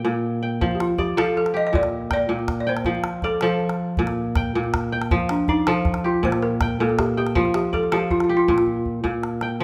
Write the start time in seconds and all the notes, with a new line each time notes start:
Already playing: G4 G5
0.05 A#2
0.43 G5
0.61 F3, calabash thump, calabash click
0.71 G4, calabash click
0.80 F4, calabash click
0.98 G4 D5, calabash thump
1.17 F3 A4, calabash click
1.37 A4, calabash click
1.46 calabash click
1.54 G4 D#5
1.67 D#5
1.73 A#2 D5, calabash thump
1.83 calabash click
2.11 D5 G5, calabash thump, calabash click
2.29 A#2
2.39 calabash click
2.48 calabash thump, calabash click
2.60 D5
2.67 C5 G5
2.77 calabash click
2.85 F3, calabash thump, calabash click
2.95 calabash click
3.04 calabash click
3.22 A4 D5, calabash thump
3.41 F3 A4, calabash click
3.60 calabash click
3.69 calabash click
3.97 A#2, calabash thump
4.07 calabash click
4.36 G5, calabash thump, calabash click
4.55 A#2
4.64 calabash click
4.74 calabash thump, calabash click
4.92 G5
5.02 calabash click
5.11 F3, calabash thump, calabash click
5.20 calabash click
5.29 D4, calabash click
5.48 D#4 D5, calabash thump
5.67 F3 A4, calabash click
5.85 calabash thump, calabash click
5.94 calabash click
6.04 F4 G4
6.23 A#2 C5, calabash thump
6.32 calabash click
6.42 A#4
6.61 G5, calabash thump, calabash click
6.80 A#2 A4
6.89 calabash click
6.99 G4, calabash thump, calabash click
7.17 G4 G5
7.27 calabash click
7.35 F3 F4, calabash thump
7.45 calabash click
7.54 G4, calabash click
7.73 A4 D5, calabash thump, calabash click
7.83 calabash click
7.92 F3 G4 A4, calabash click
8.11 F4, calabash thump
8.20 F4, calabash click
8.29 G4
8.37 F4, calabash click
8.48 A#2 F4, calabash thump, calabash click
8.58 calabash click
8.66 calabash thump
8.86 calabash thump
9.04 A#2, calabash thump
9.23 calabash click
9.41 G5, calabash click
9.60 F3